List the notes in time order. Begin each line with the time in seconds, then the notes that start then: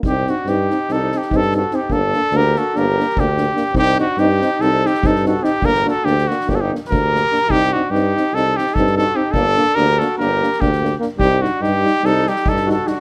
0.03 C2 C4 D#4 G4, kick
0.27 C4 D4 D#4 F#4, snare
0.45 G2 C4 D#4 G4, snare
0.70 C4 D#4, snare
0.89 C2 C4 D#4 A4, snare
0.93 D#4
1.12 C4 D#4, snare
1.18 G4
1.22 snare
1.31 G2 C4 D#4, kick
1.36 A4
1.42 snare
1.52 C4 D#4, snare
1.56 F#4 A4
1.71 C4 D#4, snare
1.75 G4
1.89 G1 A#3 D4 A4, kick
2.13 A#3 D4, snare
2.31 D2 A#3 D4, snare
2.36 G4 A#4
2.55 A#3 D4 F#4 A4, snare
2.74 G1 A#3 D4 G4 A#4, snare
2.99 A#3 D4, snare
3.09 snare
3.16 D2 A#3 D4 G4, kick
3.37 A#3 D4, snare
3.55 A#3 D4, snare
3.73 C2 C4 D#4, kick
3.78 G4
3.98 C4 D4 D#4 F#4, snare
4.17 G2 C4 D#4 G4, snare
4.41 C4 D#4, snare
4.60 C2 C4 D#4 A4, snare
4.83 C4 D#4 G4, snare
4.94 snare
5.02 G2 C4 D#4, kick
5.07 A4
5.16 snare
5.23 C4 D#4 F#4, snare
5.28 A4
5.42 C4 D#4 G4, snare
5.61 G1 A#3 D4 G4 A#4, kick
5.75 snare
5.84 A#3 D4 F#4
5.88 A4, snare
6.04 D2 A#3 D4 G4, snare
6.18 snare
6.28 A#3 D4 F#4, snare
6.41 snare
6.47 G1 A#3 D4 G4, kick, snare
6.52 F#4 A4
6.61 D#4 G4
6.71 A#3 D4, snare
6.85 snare
6.90 D2 A#3 D4 G4 A#4, kick
7.13 A#3 D4, snare
7.25 snare
7.32 A#3 D4, snare
7.42 snare
7.48 C2 C4 D#4 G4, kick
7.72 C4 D4 D#4 F#4
7.90 G2 C4 D#4 G4
7.95 snare
8.17 C4 D#4, snare
8.33 C2 C4 D#4 A4, snare
8.57 C4 D#4 G4, snare
8.67 snare
8.74 G2 C4 D#4 A4, kick
8.80 D#4
8.87 snare
8.96 C4 D#4 F#4 A4, snare
9.15 C4 D#4 G4
9.32 G1 A#3 D4 A4, kick
9.57 A#3 D4, snare
9.75 D2 A#3 D4 G4 A#4, snare
9.99 A#3 D4 F#4 A4, snare
10.18 G1 A#3 D4 G4 A#4, snare
10.41 A#3 D4, snare
10.53 snare
10.59 D2 A#3 D4 G4, kick
10.72 snare
10.81 A#3 D4, snare
11.00 A#3 D4, snare
11.18 C2 G3 D#4 G4, kick
11.41 G3 D4 D#4 F#4, snare
11.60 G2 G3 D#4 G4, snare
11.84 G3 D#4, snare
12.02 C2 G3 D#4, snare
12.06 A4
12.27 G3 D#4 G4, snare
12.36 snare
12.45 G2 G3 D#4 A4, kick
12.56 snare
12.66 G3 D#4 F#4, snare
12.71 A4
12.85 G3 D4 D#4 F#4, snare